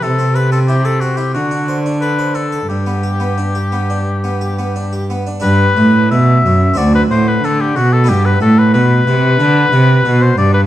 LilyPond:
<<
  \new Staff \with { instrumentName = "Oboe" } { \time 4/4 \key g \major \tempo 4 = 91 a'8 b'16 a'16 g'16 a'16 fis'16 g'16 fis'8. r16 b'8 a'8 | g'2.~ g'8 r8 | b'4 e''4 d''16 b'16 c''16 b'16 a'16 g'16 fis'16 a'16 | g'16 b'16 a'16 b'16 b'2~ b'16 c''16 d''16 b'16 | }
  \new Staff \with { instrumentName = "Harpsichord" } { \time 4/4 \key g \major r16 c'16 a'16 c'16 e'16 a'16 c'16 e'16 r16 d'16 c''16 d'16 a'16 c''16 d'16 a'16 | r16 b16 g'16 b16 d'16 g'16 b16 d'16 r16 b16 g'16 b16 d'16 g'16 b16 d'16 | <d' g'>2 <c' d' fis'>2 | <b d' g'>1 | }
  \new Staff \with { instrumentName = "Harpsichord" } { \clef bass \time 4/4 \key g \major c2 d2 | g,2.~ g,8 r8 | g,8 a,8 b,8 fis,8 d,8 a,8 d8 b,8 | g,8 a,8 b,8 c8 d8 c8 b,8 g,8 | }
  \new Staff \with { instrumentName = "Cello" } { \clef bass \time 4/4 \key g \major c2 d2 | g,2.~ g,8 r8 | g,8 a,8 b,8 fis,8 d,8 a,8 d8 b,8 | g,8 a,8 b,8 c8 d8 c8 b,8 g,8 | }
>>